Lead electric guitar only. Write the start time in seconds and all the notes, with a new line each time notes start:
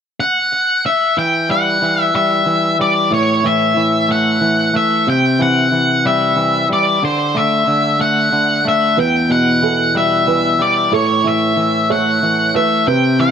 0.20 F#5
0.86 E5
1.19 G5
1.51 F#5
2.01 E5
2.16 E5
2.81 D5
3.14 C#5
3.46 E5
4.12 F#5
4.76 E5
5.10 G5
5.42 F#5
6.07 E5
6.73 D5
7.05 C5
7.37 E5
8.01 F#5
8.68 E5
9.00 G5
9.32 F#5
9.97 E5
10.62 D5
10.94 C#5
11.27 E5
11.92 F#5
12.56 E5
12.88 G5
13.21 F#5